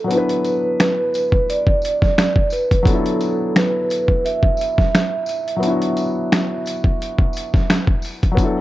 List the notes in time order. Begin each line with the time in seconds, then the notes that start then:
0.04 F#3 B3
0.11 D4 E4 B4, closed hi-hat
0.17 B4
0.29 closed hi-hat
0.44 closed hi-hat, tambourine
0.80 B4, finger snap, snare, closed hi-hat
1.14 closed hi-hat, tambourine
1.32 kick
1.50 D5, closed hi-hat
1.67 kick
1.82 closed hi-hat, tambourine
2.02 kick, snare
2.18 finger snap, snare, closed hi-hat
2.36 kick
2.50 B4, closed hi-hat, tambourine
2.71 kick, closed hi-hat
2.83 F#3 B3, kick
2.87 D4 A4, closed hi-hat
2.92 E4 A4
3.06 closed hi-hat
3.21 closed hi-hat, tambourine
3.56 B4, finger snap, snare, closed hi-hat
3.90 closed hi-hat, tambourine
4.08 kick
4.25 E5, closed hi-hat
4.43 kick
4.57 tambourine
4.61 closed hi-hat
4.78 kick, snare
4.95 finger snap, snare, closed hi-hat
5.26 closed hi-hat, tambourine
5.48 closed hi-hat
5.56 F#3 B3
5.63 D4 E4, closed hi-hat
5.69 F#4
5.82 closed hi-hat
5.97 closed hi-hat, tambourine
6.32 finger snap, snare, closed hi-hat
6.66 closed hi-hat, tambourine
6.84 kick
7.02 closed hi-hat
7.18 kick
7.33 closed hi-hat, tambourine
7.54 kick, snare
7.70 finger snap, snare, closed hi-hat
7.87 kick
8.02 open hi-hat, tambourine
8.23 kick, closed hi-hat
8.32 F#3 B3
8.37 D4, kick, closed hi-hat
8.42 E4 A4